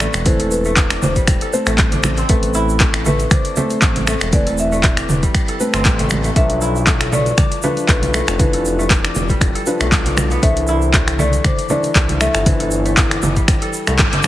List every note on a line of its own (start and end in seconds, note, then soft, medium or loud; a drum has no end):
0.00 0.23 A3 medium
0.00 0.65 A3 loud
0.00 0.23 C4 medium
0.00 0.91 D4 loud
0.00 0.23 B4 loud
0.00 0.22 D5 loud
0.00 finger snap medium
0.00 muted conga medium
0.00 shaker medium
0.14 0.96 E1 loud
0.14 finger snap medium
0.14 closed hi-hat soft
0.14 shaker medium
0.26 2.60 E3 medium
0.26 1.51 A3 medium
0.26 1.50 C4 medium
0.26 1.50 A4 loud
0.26 0.37 C5 loud
0.26 kick loud
0.26 closed hi-hat medium
0.26 mid tom medium
0.26 shaker soft
0.40 1.41 A4 medium
0.40 closed hi-hat soft
0.40 muted conga medium
0.51 1.04 B4 loud
0.51 shaker medium
0.64 1.67 A3 medium
0.64 shaker medium
0.76 kick loud
0.76 clap loud
0.76 closed hi-hat medium
0.76 muted conga soft
0.76 high conga medium
0.76 shaker soft
0.90 1.92 D4 medium
0.90 finger snap loud
0.90 closed hi-hat soft
1.02 1.20 E1 medium
1.02 2.00 C5 medium
1.02 mid tom medium
1.02 low conga loud
1.02 shaker medium
1.16 3.50 G3 medium
1.16 kick medium
1.16 closed hi-hat soft
1.16 muted conga soft
1.16 shaker medium
1.27 1.37 E1 medium
1.27 finger snap medium
1.27 kick loud
1.27 closed hi-hat medium
1.27 high conga medium
1.27 shaker soft
1.41 2.74 A4 medium
1.41 closed hi-hat soft
1.53 2.27 A3 loud
1.53 2.27 C4 medium
1.53 2.27 C5 loud
1.53 shaker medium
1.66 2.23 A1 medium
1.66 2.29 A3 medium
1.66 finger snap medium
1.66 closed hi-hat soft
1.66 muted conga soft
1.66 shaker medium
1.78 kick loud
1.78 clap loud
1.78 closed hi-hat medium
1.78 high conga loud
1.78 shaker soft
1.92 3.31 D4 medium
1.92 closed hi-hat soft
1.92 high conga medium
1.92 low conga loud
2.04 finger snap loud
2.04 muted conga soft
2.04 high conga loud
2.04 low conga loud
2.04 shaker loud
2.17 3.98 C4 medium
2.17 closed hi-hat soft
2.17 shaker medium
2.29 3.25 A1 loud
2.29 2.80 A3 loud
2.29 3.54 A3 medium
2.29 3.54 C4 medium
2.29 3.54 B4 loud
2.29 kick loud
2.29 closed hi-hat medium
2.29 shaker soft
2.43 closed hi-hat soft
2.43 muted conga medium
2.54 4.11 E4 loud
2.54 shaker loud
2.69 shaker medium
2.80 3.05 A3 medium
2.80 kick loud
2.80 clap loud
2.80 closed hi-hat medium
2.80 muted conga soft
2.80 high conga medium
2.80 shaker soft
2.94 finger snap loud
2.94 closed hi-hat soft
3.06 3.56 A3 loud
3.06 3.32 B4 medium
3.06 mid tom medium
3.06 low conga loud
3.06 shaker medium
3.19 closed hi-hat soft
3.19 muted conga soft
3.19 shaker medium
3.31 4.97 D4 loud
3.31 4.36 C5 medium
3.31 finger snap medium
3.31 kick loud
3.31 closed hi-hat medium
3.31 mid tom loud
3.31 high conga medium
3.31 shaker soft
3.45 closed hi-hat soft
3.56 3.82 A3 medium
3.56 4.30 A3 medium
3.56 4.30 C4 medium
3.56 4.30 C5 loud
3.56 high conga medium
3.56 low conga loud
3.56 shaker medium
3.70 closed hi-hat soft
3.70 muted conga soft
3.70 shaker medium
3.82 4.14 A1 loud
3.82 4.07 A3 medium
3.82 kick loud
3.82 clap loud
3.82 closed hi-hat medium
3.82 shaker soft
3.96 closed hi-hat soft
3.96 high conga medium
3.96 low conga medium
4.07 4.72 A3 loud
4.07 finger snap loud
4.07 muted conga medium
4.07 shaker loud
4.21 5.03 E1 loud
4.21 finger snap loud
4.21 closed hi-hat soft
4.21 shaker medium
4.32 6.41 E3 medium
4.32 5.57 A3 medium
4.32 5.57 C4 medium
4.32 5.57 B4 loud
4.32 4.57 D5 loud
4.32 kick loud
4.32 closed hi-hat medium
4.32 mid tom medium
4.32 shaker soft
4.47 5.48 A4 medium
4.47 closed hi-hat soft
4.47 muted conga soft
4.58 6.07 E5 loud
4.58 shaker loud
4.72 5.99 A3 medium
4.72 shaker medium
4.83 kick loud
4.83 clap loud
4.83 closed hi-hat medium
4.83 muted conga soft
4.83 high conga medium
4.83 shaker soft
4.97 6.66 D4 medium
4.97 finger snap medium
4.97 closed hi-hat soft
5.09 5.27 E1 loud
5.09 mid tom loud
5.09 low conga loud
5.09 shaker medium
5.23 6.41 G3 medium
5.23 kick medium
5.23 closed hi-hat soft
5.23 muted conga medium
5.23 shaker medium
5.34 finger snap medium
5.34 kick loud
5.34 closed hi-hat medium
5.34 high conga medium
5.34 shaker soft
5.48 6.80 A4 medium
5.48 closed hi-hat soft
5.60 6.34 A3 loud
5.60 6.34 C4 medium
5.60 6.34 B4 loud
5.60 shaker loud
5.73 5.87 G1 loud
5.73 7.54 C4 loud
5.73 finger snap medium
5.73 closed hi-hat soft
5.73 muted conga soft
5.73 shaker medium
5.85 6.30 A1 loud
5.85 kick loud
5.85 clap loud
5.85 closed hi-hat medium
5.85 high conga loud
5.85 shaker soft
5.99 6.24 A3 medium
5.99 closed hi-hat soft
5.99 high conga medium
5.99 low conga medium
6.10 finger snap loud
6.10 muted conga medium
6.10 high conga loud
6.10 low conga loud
6.10 shaker medium
6.24 6.36 A3 medium
6.24 closed hi-hat soft
6.24 shaker medium
6.36 7.32 B1 loud
6.36 7.61 F3 medium
6.36 6.87 A3 loud
6.36 7.61 D4 medium
6.36 7.61 B4 loud
6.36 7.15 E5 loud
6.36 kick loud
6.36 closed hi-hat medium
6.36 shaker soft
6.50 closed hi-hat soft
6.50 muted conga medium
6.61 8.18 E4 loud
6.61 shaker medium
6.75 shaker medium
6.87 7.12 A3 medium
6.87 kick loud
6.87 clap loud
6.87 closed hi-hat medium
6.87 muted conga soft
6.87 high conga medium
6.87 shaker soft
7.01 finger snap loud
7.01 closed hi-hat soft
7.12 7.63 A3 loud
7.12 7.91 D5 loud
7.12 mid tom medium
7.12 low conga medium
7.12 shaker loud
7.26 closed hi-hat soft
7.26 muted conga medium
7.26 shaker soft
7.38 9.04 D4 loud
7.38 finger snap medium
7.38 kick loud
7.38 closed hi-hat medium
7.38 mid tom loud
7.38 high conga medium
7.38 shaker soft
7.52 closed hi-hat soft
7.62 8.37 F3 medium
7.62 7.88 A3 medium
7.62 8.37 D4 medium
7.62 8.37 B4 loud
7.62 high conga medium
7.62 low conga medium
7.62 shaker loud
7.77 closed hi-hat soft
7.77 muted conga soft
7.77 shaker soft
7.89 8.21 B1 medium
7.89 8.14 A3 medium
7.89 8.38 B4 medium
7.89 kick loud
7.89 clap loud
7.89 closed hi-hat medium
7.89 shaker soft
8.02 closed hi-hat soft
8.02 high conga medium
8.02 low conga medium
8.14 8.78 A3 loud
8.14 finger snap medium
8.14 muted conga soft
8.14 shaker loud
8.28 9.10 F1 loud
8.28 finger snap medium
8.28 closed hi-hat soft
8.28 shaker medium
8.39 10.48 E3 medium
8.39 9.64 F3 medium
8.39 9.64 D4 medium
8.39 9.37 B4 medium
8.39 9.64 B4 loud
8.39 kick loud
8.39 closed hi-hat medium
8.39 mid tom medium
8.39 shaker soft
8.53 9.55 A4 medium
8.53 closed hi-hat soft
8.53 muted conga soft
8.65 shaker medium
8.79 9.80 A3 medium
8.79 shaker medium
8.90 kick loud
8.90 clap loud
8.90 closed hi-hat medium
8.90 muted conga soft
8.90 high conga medium
8.90 shaker soft
9.04 10.05 D4 medium
9.04 finger snap medium
9.04 closed hi-hat soft
9.15 9.34 F1 medium
9.15 mid tom loud
9.15 low conga medium
9.15 shaker medium
9.29 10.48 G3 medium
9.29 kick medium
9.29 closed hi-hat soft
9.29 muted conga medium
9.29 shaker soft
9.40 9.51 F1 medium
9.40 finger snap medium
9.40 kick loud
9.40 closed hi-hat medium
9.40 high conga medium
9.40 shaker soft
9.55 10.87 A4 medium
9.55 closed hi-hat soft
9.66 10.40 F3 loud
9.66 10.40 D4 medium
9.66 10.40 B4 loud
9.66 shaker medium
9.80 10.37 B1 medium
9.80 10.43 A3 medium
9.80 finger snap medium
9.80 closed hi-hat soft
9.80 muted conga soft
9.80 shaker medium
9.92 kick loud
9.92 clap loud
9.92 closed hi-hat medium
9.92 high conga loud
9.92 shaker soft
10.06 11.44 D4 medium
10.06 closed hi-hat soft
10.06 high conga medium
10.06 low conga medium
10.17 finger snap medium
10.17 muted conga medium
10.17 high conga loud
10.17 low conga loud
10.17 shaker loud
10.31 12.18 B3 medium
10.31 closed hi-hat soft
10.31 shaker soft
10.42 11.39 C2 loud
10.42 11.67 E3 medium
10.42 10.93 A3 loud
10.42 11.67 D4 medium
10.42 11.67 C5 loud
10.42 11.22 E5 loud
10.42 kick loud
10.42 closed hi-hat medium
10.42 shaker soft
10.56 closed hi-hat soft
10.56 muted conga medium
10.67 12.25 E4 loud
10.67 shaker medium
10.82 shaker soft
10.94 11.19 A3 medium
10.94 kick loud
10.94 clap loud
10.94 closed hi-hat medium
10.94 muted conga soft
10.94 high conga medium
10.94 shaker soft
11.08 finger snap medium
11.08 closed hi-hat soft
11.19 11.70 A3 loud
11.19 11.45 D5 loud
11.19 mid tom loud
11.19 low conga loud
11.19 shaker medium
11.33 closed hi-hat soft
11.33 muted conga soft
11.33 shaker medium
11.44 13.11 D4 loud
11.44 11.71 C5 loud
11.44 finger snap medium
11.44 kick loud
11.44 closed hi-hat medium
11.44 mid tom loud
11.44 high conga medium
11.44 shaker soft
11.59 closed hi-hat soft
11.69 12.44 E3 medium
11.69 11.95 A3 medium
11.69 12.44 D4 medium
11.69 12.44 C5 loud
11.69 12.23 D5 loud
11.69 high conga medium
11.69 low conga loud
11.69 shaker medium
11.83 closed hi-hat soft
11.83 muted conga soft
11.83 shaker medium
11.95 12.28 C2 loud
11.95 12.20 A3 medium
11.95 kick loud
11.95 clap loud
11.95 closed hi-hat medium
11.95 shaker soft
12.09 closed hi-hat soft
12.09 high conga medium
12.09 low conga medium
12.21 12.85 A3 loud
12.21 13.95 E5 loud
12.21 finger snap medium
12.21 muted conga medium
12.21 shaker medium
12.35 13.17 G1 loud
12.35 finger snap medium
12.35 closed hi-hat soft
12.35 shaker medium
12.46 14.27 E3 medium
12.46 13.71 E3 medium
12.46 13.71 D4 medium
12.46 13.71 C5 loud
12.46 kick loud
12.46 closed hi-hat medium
12.46 mid tom medium
12.46 shaker soft
12.60 13.62 A4 medium
12.60 closed hi-hat soft
12.60 muted conga medium
12.71 shaker loud
12.85 13.87 A3 medium
12.85 closed hi-hat soft
12.85 shaker soft
12.96 kick loud
12.96 clap loud
12.96 closed hi-hat medium
12.96 muted conga soft
12.96 high conga medium
12.96 shaker soft
13.11 14.13 D4 medium
13.11 finger snap medium
13.11 closed hi-hat soft
13.22 13.41 G1 medium
13.22 mid tom medium
13.22 low conga loud
13.22 shaker medium
13.36 14.27 G3 medium
13.36 kick medium
13.36 closed hi-hat soft
13.36 muted conga medium
13.36 shaker medium
13.48 13.58 G1 medium
13.48 finger snap medium
13.48 kick loud
13.48 closed hi-hat medium
13.48 high conga medium
13.48 shaker soft
13.62 14.27 A4 medium
13.62 closed hi-hat soft
13.73 shaker medium
13.87 13.98 C2 medium
13.87 14.27 A3 medium
13.87 finger snap medium
13.87 closed hi-hat soft
13.87 muted conga soft
13.87 shaker medium
13.98 14.08 G1 medium
13.98 kick loud
13.98 clap loud
13.98 closed hi-hat medium
13.98 high conga loud
13.98 shaker soft
14.13 14.21 G1 loud
14.13 14.27 D4 medium
14.13 closed hi-hat soft
14.13 high conga medium
14.13 low conga medium
14.23 finger snap medium
14.23 muted conga medium
14.23 high conga medium
14.23 low conga loud
14.23 shaker medium